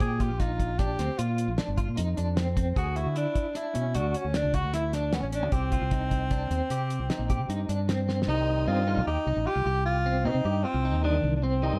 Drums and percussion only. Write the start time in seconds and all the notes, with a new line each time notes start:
0.00 kick, closed hi-hat
0.20 kick, closed hi-hat
0.40 kick, snare, closed hi-hat
0.60 kick, closed hi-hat
0.79 kick, snare, closed hi-hat
0.99 snare, closed hi-hat
1.19 closed hi-hat
1.38 closed hi-hat
1.58 snare, closed hi-hat
1.78 kick, closed hi-hat
1.97 closed hi-hat
2.17 closed hi-hat
2.37 snare, closed hi-hat
2.57 kick, closed hi-hat
2.76 kick, closed hi-hat
2.96 closed hi-hat
3.16 closed hi-hat
3.35 kick, closed hi-hat
3.55 closed hi-hat
3.75 closed hi-hat
3.95 closed hi-hat
4.14 closed hi-hat
4.34 snare, closed hi-hat
4.54 kick, closed hi-hat
4.74 snare, closed hi-hat
4.93 snare, closed hi-hat
5.13 snare, closed hi-hat
5.33 closed hi-hat
5.52 kick, closed hi-hat
5.72 kick, closed hi-hat
5.91 kick, closed hi-hat
6.11 kick, closed hi-hat
6.31 kick, closed hi-hat
6.51 closed hi-hat
6.70 closed hi-hat
6.90 closed hi-hat
7.10 snare, closed hi-hat
7.30 kick, closed hi-hat
7.50 closed hi-hat
7.69 closed hi-hat
7.89 snare, closed hi-hat
8.09 snare
8.22 snare